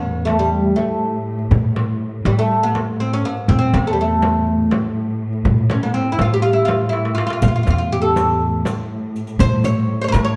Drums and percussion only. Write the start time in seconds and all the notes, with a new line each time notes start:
0.27 darbuka tek, frame drum
0.53 darbuka ka
0.78 frame drum
1.39 darbuka ka
1.51 frame drum, darbuka dum
1.76 darbuka tek, frame drum
2.25 darbuka tek, frame drum
2.51 darbuka ka
2.75 darbuka tek, frame drum
3.37 darbuka ka
3.49 darbuka dum, frame drum
3.74 darbuka tek, frame drum
4.22 darbuka tek, frame drum
4.47 darbuka ka
4.71 darbuka tek, frame drum
5.33 darbuka ka
5.45 frame drum, darbuka dum
5.58 darbuka ka
5.70 darbuka tek, frame drum
6.19 darbuka tek, frame drum
6.68 darbuka tek, frame drum
6.93 darbuka tek
7.05 darbuka ka
7.18 darbuka tek
7.30 darbuka ka
7.42 riq, darbuka dum, frame drum
7.67 riq, darbuka tek, frame drum
8.16 riq, darbuka tek, frame drum
8.42 darbuka ka
8.65 riq, darbuka tek, frame drum
9.16 riq
9.27 riq, darbuka ka
9.39 riq, frame drum, darbuka dum
9.64 riq, frame drum
10.14 riq, darbuka tek, frame drum